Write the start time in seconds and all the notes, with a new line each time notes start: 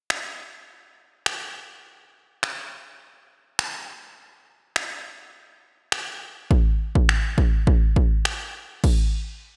0.10 finger snap
1.26 finger snap
2.43 finger snap
3.59 finger snap
4.76 finger snap
5.92 finger snap
6.51 kick
6.95 kick
7.09 finger snap
7.38 kick
7.67 kick
7.96 kick
8.25 finger snap
8.84 kick, crash